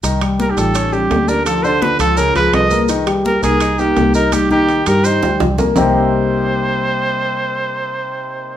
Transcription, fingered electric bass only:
\new Staff \with { instrumentName = "Fingered electric bass" } { \clef bass \time 4/4 \key c \minor \tempo 4 = 167 c,4. a,,4. d,4~ | d,4. des,4 des,8 c,4~ | c,4. c,4. c,4~ | c,4. g,4 d,8 c,4 |
c,1~ | c,1 | }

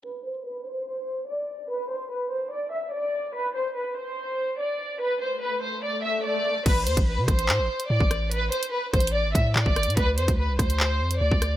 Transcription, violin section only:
\new Staff \with { instrumentName = "Violin section" } { \time 4/4 \key a \minor \tempo 4 = 145 b'8 c''8 b'8 c''4. d''4 | b'8 c''8 b'8 c''8 d''8 e''8 d''4 | b'8 c''8 b'8 c''4. d''4 | b'8 c''8 b'8 c''8 d''8 e''8 d''4 |
b'8 c''8 b'8 c''4. d''4 | b'8 c''8 b'8 c''8 d''8 e''8 d''4 | b'8 c''8 b'8 c''4. d''4 | }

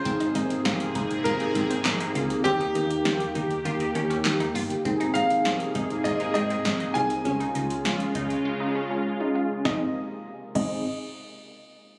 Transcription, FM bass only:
\new Staff \with { instrumentName = "FM bass" } { \clef bass \time 4/4 \key aes \major \tempo 4 = 100 aes,,8 aes,,8 aes,,8 aes,,8 aes,,8 aes,,8 aes,,8 des,8 | ees,8 ees,8 ees,8 ees,8 ees,8 ees,8 ees,8 g,,8 | aes,,8 aes,,8. r16 aes,,8 aes,,8 aes,8 aes,,8 c,8 | des,8 des,8. r16 des,8 r2 |
aes,,8 r4 aes,,8 r2 | }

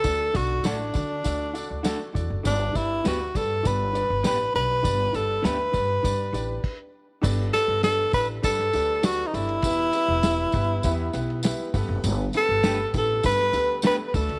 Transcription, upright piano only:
<<
  \new Staff \with { instrumentName = "Upright piano" } { \time 4/4 \key g \lydian \tempo 4 = 100 <d' fis' a' d''>8 <d' fis' a' d''>8 <d' fis' a' d''>8 <d' fis' a' d''>8 <d' fis' a' d''>8 <d' fis' a' d''>8 <d' fis' a' d''>8 <d' fis' a' d''>8 | <d' g' b' d''>8 <d' g' b' d''>8 <d' g' b' d''>8 <d' g' b' d''>8 <d' g' b' d''>8 <d' g' b' d''>8 <d' g' b' d''>8 <d' g' b' d''>8 | <d' g' b' d''>8 <d' g' b' d''>8 <d' g' b' e''>8 <d' g' b' d''>8 <d' g' b' d''>8 <d' g' b' d''>8 r4 | <d' g' a' b' d''>8 <d' g' a' b' d''>8 <d' g' a' b' d''>8 <d' g' a' b' d''>8 <d' g' a' b' d''>8 <d' g' a' b' d''>8 <d' g' a' b' d''>8 <d' g' a' b' d''>8 |
<b e' g' b' e''>8 <b e' g' b' e''>8 <b e' g' b' e''>8 <b e' g' b' e''>8 <b e' g' b' e''>8 <b e' g' b' e''>8 <b e' g' b' e''>8 <b d' g' a' b'>8~ | <b d' g' a' b'>8 <b d' g' a' b'>8 <b d' g' a' b'>8 <b d' g' a' b'>8 <b d' g' a' b'>8 <b d' g' a' b'>8 <b d' g' a' b'>8 <a d' fis' a' d''>8 | }
  \new Staff \with { instrumentName = "Upright piano" } { \clef bass \time 4/4 \key g \lydian d4. r2 r8 | g,4. r2 r8 | g,4. r2 r8 | g,4. r2 r8 |
e4. r2 g,8~ | g,4 r2 r8 d8 | }
>>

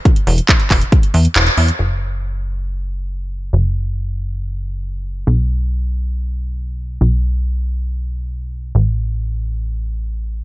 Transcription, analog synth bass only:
\new Staff \with { instrumentName = "Analog synth bass" } { \clef bass \time 4/4 \key e \mixolydian \tempo 4 = 138 r8 e,,8 r8 e,,8 r8 e,8 e,,8 e,8 | fis,,1 | fis,,1 | b,,1 |
b,,1 | a,,1 | }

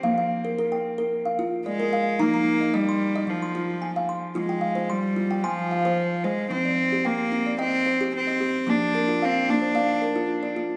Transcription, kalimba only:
<<
  \new Staff \with { instrumentName = "Kalimba" } { \time 4/4 \key f \dorian \tempo 4 = 111 << { <f'' g''>16 f''8 bes'8 g''8. r16 f''8. d''8 f''8 | bes''16 bes''8 ees''8 c'''8. r16 c'''8. aes''8 c'''8~ | c'''16 g''16 f''8 c'''8. g''16 c'''8 f''8. r8. | r16 d''8. g''8. d''16 g''8 c''8. ees''8. |
r8 bes'8 f''8. c''16 f''8 bes'8. d''8. | } \\ { bes8 r8 bes'8 r16 bes'8 r16 f'8 r16 bes'8 r16 | ees'8 r8 ees''8 r16 ees''16 r8 f'8 r16 f''8 r16 | f'8 r16 c''8 r16 f'8 aes''8 r16 c''8 r16 c''8 | c'8 r16 g'8 r16 c'8 ees''8 r16 g'8 r16 g'8 |
bes8 r16 f'8 r16 bes8 d''8 r16 f'8 r16 f'8 | } >> }
  \new Staff \with { instrumentName = "Kalimba" } { \clef bass \time 4/4 \key f \dorian f1 | f2 f2 | f1 | f1 |
f1 | }
>>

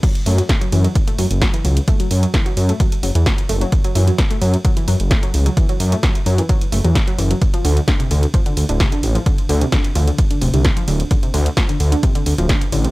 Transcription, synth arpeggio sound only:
\new Staff \with { instrumentName = "Synth arpeggio sound" } { \clef bass \time 4/4 \tempo 4 = 130 fis16 r16 a16 fis16 r16 fis16 e16 fis16 r16 a16 fis16 r16 fis16 e16 fis16 r16 | a16 fis16 r16 fis16 e16 fis16 r16 a16 fis16 r16 fis16 e16 fis16 r16 a16 fis16 | r16 fis16 e16 fis16 r16 a16 fis16 r16 fis16 e16 fis16 r16 a16 fis16 r16 fis16 | e16 fis16 r16 a16 fis16 r16 fis16 e16 fis16 r16 a16 fis16 r16 fis16 e16 fis16 |
r16 f16 d16 r16 d16 bis,16 d16 r16 f16 d16 r16 d16 bis,16 d16 r16 f16 | d16 r16 d16 bis,16 d16 r16 f16 d16 r16 d16 bis,16 d16 r16 f16 d16 r16 | d16 bis,16 d16 r16 f16 d16 r16 d16 bis,16 d16 r16 f16 d16 r16 d16 bis,16 | }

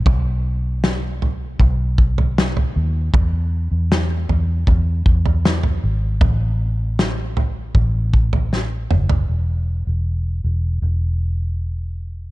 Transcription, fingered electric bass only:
\new Staff \with { instrumentName = "Fingered electric bass" } { \clef bass \time 4/4 \key e \mixolydian \tempo 4 = 78 b,,2 b,,4. dis,8 | e,8. e,8. e,8 e,8 e,4 gis,,8 | a,,2 a,,4. fis,,8 | e,,8. e,,8. e,,8 e,,2 | }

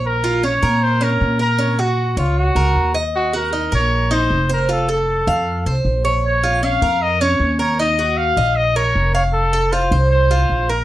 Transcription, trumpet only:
\new Staff \with { instrumentName = "Trumpet" } { \time 4/4 \key bes \minor \tempo 4 = 155 bes'4 des''4 c''8 bes'4 bes'8~ | bes'8 ges'4 f'8 ges'4. r8 | ges'8 bes'4 des''4 c''4 bes'8 | a'8 a'2~ a'8 r4 |
des''4 f''4 ees''8 des''4 des''8 | ees''4 f''4 ees''8 des''4 des''8 | a'4 c''4 c''4. bes'8 | }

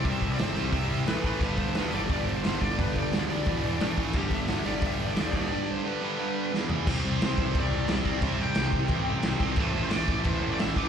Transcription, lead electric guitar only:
\new Staff \with { instrumentName = "Lead electric guitar" } { \time 4/4 \key c \major \tempo 4 = 176 e''8. d''16 c''8. e''16 e''4 b'8 b'8~ | b'8 c''8 b'8 d''8 d''8 c''8 c''8 d''8 | b'8 d''8 d''2~ d''8 r8 | g'8 e''4 d''8 e''8 d''8 d''8 d''8~ |
d''8 c''8 b'2 r4 | r4 c''4 d''4 d''4 | e''8 g''2. r8 | c''8. c''16 d''8. e''16 c''8. d''16 e''8 d''8 | }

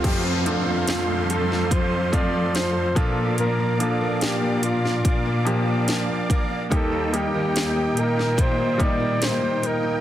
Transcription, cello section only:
\new Staff \with { instrumentName = "Cello section" } { \clef bass \time 4/4 \key bes \major \tempo 4 = 72 f,8. f,2~ f,8. bes,8~ | bes,8 r16 bes,4~ bes,16 bes,4. r8 | ees,8. ees,8. bes,2~ bes,8 | }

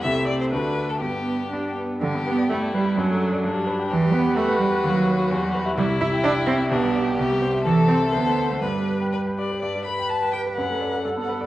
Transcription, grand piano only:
\new Staff \with { instrumentName = "Grand piano" } { \time 2/4 \key g \major \tempo 4 = 126 <c, a e' g'>4 <d, a d' fis'>4 | g,4 <b d' g'>4 | g,16 b16 g'16 d''16 g''16 d''16 b'16 g'16 | fis,16 a16 a'16 d''16 g,16 g16 b'16 g'16 |
e,16 g16 b'16 g'16 b''16 b'16 g'16 b'16 | dis,16 fis16 b'16 fis'16 e,16 g16 b'16 e''16 | c,16 g16 e''16 g''16 e'''16 g''16 g'16 e''16 | b,,16 g16 d''16 g''16 c,16 g16 c''16 e''16 |
c,16 a16 c''16 e''16 d,16 a16 c''16 fis''16 | g,16 g16 b'16 g''16 b''16 g''16 g'16 b'16 | g,16 g16 b'16 g''16 b''16 g''16 g'16 b'16 | fis,16 a16 d''16 a'16 g,16 b16 b'16 d''16 | }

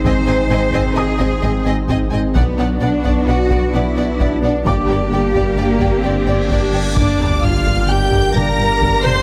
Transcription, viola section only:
\new Staff \with { instrumentName = "Viola section" } { \time 5/4 \key g \phrygian \tempo 4 = 130 c'8 c'8 c'8 c'8 c'8 c'8 c'8 c'8 c'8 c'8 | b8 b8 b8 b8 b8 b8 b8 b8 b8 b8 | bes8 bes8 g4 bes4 c'4 d'4 | d'4 f'4 g'4 bes'4. c''8 | }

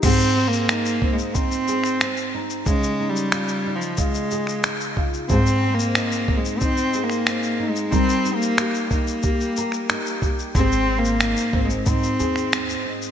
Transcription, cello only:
\new Staff \with { instrumentName = "Cello" } { \time 4/4 \key aes \major \tempo 4 = 91 \tuplet 3/2 { c'4 bes8~ bes4 aes8 } c'4. r8 | \tuplet 3/2 { aes4 g8~ g4 f8 } aes4. r8 | \tuplet 3/2 { c'4 bes8~ bes4 aes8 c'4 bes8~ bes4 aes8 } | \tuplet 3/2 { c'4 bes8~ } bes8 bes2 r8 |
\tuplet 3/2 { c'4 bes8~ bes4 aes8 } c'4. r8 | }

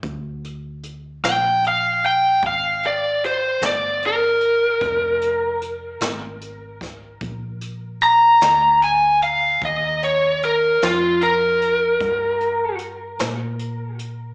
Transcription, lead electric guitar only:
\new Staff \with { instrumentName = "Lead electric guitar" } { \time 12/8 \key bes \mixolydian \tempo 4. = 50 r4. g''8 f''8 g''8 f''8 d''8 c''8 d''8 bes'4~ | bes'4 r2. bes''4 aes''8 f''8 | ees''8 des''8 bes'8 f'8 bes'2 r2 | }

